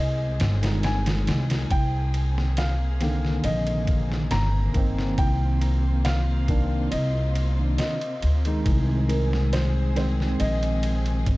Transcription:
Already playing: upright bass C2, string section C3 G#3 C4 G#4, felt piano D#5
0.40 upright bass G1, snare, ride
0.62 tine electric piano D#3 G#3 D#4, snare, ride
0.83 felt piano G#5, snare, ride
1.06 snare, ride
1.27 upright bass C2, snare, ride
1.50 snare, ride
1.70 upright bass C2, string section C3 A#3 C4, felt piano G5, kick, ride
2.14 ride
2.38 snare
2.57 felt piano F5, snare, ride
3.00 tine electric piano D3 D#3 A#3, snare, ride
3.25 snare
3.44 upright bass A#1, felt piano D#5, ride
3.67 ride
3.87 kick, ride
4.12 snare
4.31 upright bass G1, felt piano A#5, snare, ride
4.74 upright bass G1, tine electric piano D#3 A#3 C4, kick, ride
4.98 snare
5.17 upright bass C2, string section F4, felt piano G5, kick, ride
5.61 ride
6.05 felt piano F5, snare, ride
6.48 tine electric piano D#3 A#3 D4, kick, ride
6.91 upright bass C2, felt piano D#5, ride
7.35 ride
7.59 tine electric piano D#3 A#3 D4
7.78 felt piano D#5, snare, ride
8.01 ride
8.22 upright bass D2, ride
8.45 tine electric piano D#3 G#3 D#4, ride
8.65 upright bass C2, string section G#3 G#4, kick, ride
9.09 felt piano A#4, ride
9.33 snare
9.53 felt piano C5, snare, ride
9.96 tine electric piano D#3 G#3 C4, felt piano C5, snare, ride
10.20 snare
10.40 upright bass A#1, felt piano D#5, ride
10.63 ride
10.83 ride
11.06 ride
11.26 upright bass G1, kick, ride

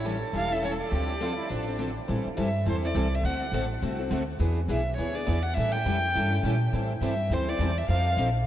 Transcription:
Already playing: upright bass A1, violin C#5
0.05 steel-string acoustic guitar E3 G3 C#4 E4 A4, violin A4
0.33 upright bass E1, steel-string acoustic guitar E3 G3 C#4 E4 A4, violin F5
0.50 steel-string acoustic guitar C#4 E4 A4, violin E5
0.62 steel-string acoustic guitar E3 G3 C#4 E4 A4, violin C#5
0.81 violin D5
0.91 upright bass D2, steel-string acoustic guitar D3 F3 C4 D4 A4, violin G4
1.20 steel-string acoustic guitar D3 F3 C4 D4 A4, violin F4
1.37 violin E4
1.49 upright bass A1, steel-string acoustic guitar D3 F3 C4 D4 A4, violin D4
1.66 steel-string acoustic guitar C4 D4 A4
1.79 steel-string acoustic guitar D3 F3 C4 D4 A4
2.08 upright bass A2, steel-string acoustic guitar E3 G3 C4 E4 A4
2.26 muted upright bass stroke
2.37 upright bass G2, steel-string acoustic guitar E3 G3 C4 E4 A4
2.42 violin E5
2.66 upright bass E2, steel-string acoustic guitar E3 G3 C4 E4 A4, violin C5
2.82 steel-string acoustic guitar C4 E4 A4, violin D5
2.95 upright bass C2, steel-string acoustic guitar E3 G3 C4 E4 A4
3.15 violin E5
3.23 upright bass D2, steel-string acoustic guitar D3 A3 C4 F#4 A4, violin F#5
3.52 upright bass A1, steel-string acoustic guitar D3 A3 C4 F#4 A4
3.82 upright bass C2, steel-string acoustic guitar D3 A3 C4 F#4 A4
3.99 steel-string acoustic guitar C4 F#4 A4
4.10 upright bass D2, steel-string acoustic guitar D3 A3 C4 F#4 A4
4.39 upright bass E2, steel-string acoustic guitar E3 B3 D4 G#4 B4
4.68 upright bass B1, steel-string acoustic guitar E3 B3 D4 G#4 B4, violin E5
4.97 upright bass D2, steel-string acoustic guitar E3 B3 D4 G#4 B4, violin C#5
5.14 steel-string acoustic guitar B3 D4 G#4, violin D5
5.26 upright bass E2, steel-string acoustic guitar E3 B3 D4 G#4 B4
5.43 violin F#5
5.54 upright bass A2, steel-string acoustic guitar E3 G3 C#4 E4 A4, violin E5
5.72 violin G5
5.85 upright bass F2, steel-string acoustic guitar E3 G3 C#4 E4 A4
6.15 upright bass G2, steel-string acoustic guitar E3 G3 C#4 E4 A4
6.32 steel-string acoustic guitar C#4 E4 A4
6.43 upright bass A#2, steel-string acoustic guitar E3 G3 C#4 E4 A4
6.73 upright bass A2, steel-string acoustic guitar E3 G3 C4 E4 A4
7.01 upright bass G2, steel-string acoustic guitar E3 G3 C4 E4 A4, violin E5
7.30 upright bass D2, steel-string acoustic guitar E3 G3 C4 E4 A4, violin C5
7.48 steel-string acoustic guitar C4 E4 A4, violin D5
7.59 upright bass E2, steel-string acoustic guitar E3 G3 C4 E4 A4
7.78 violin E5
7.88 upright bass F2, steel-string acoustic guitar F3 C4 D#4 A4, violin F5
8.17 upright bass A#1, steel-string acoustic guitar F3 C4 D#4 A4

